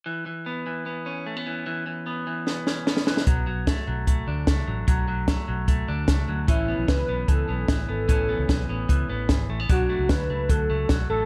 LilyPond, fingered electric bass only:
\new Staff \with { instrumentName = "Fingered electric bass" } { \clef bass \time 4/4 \key a \major \tempo 4 = 149 r1 | r1 | b,,4~ b,,16 r16 b,,4 d,8 cis,8 a,,8 | b,,4~ b,,16 r16 b,,4 d,8 cis,8 d,8 |
a,,8. b,,16 cis,8 b,,8 cis,8 b,,8 r8 gis,,8 | a,,8. cis,16 b,,8 a,,8 cis,8 a,,8 gis,,8 a,,8 | b,,8. cis,16 d,8 cis,8 d,8 cis,8 b,,8 a,,8 | }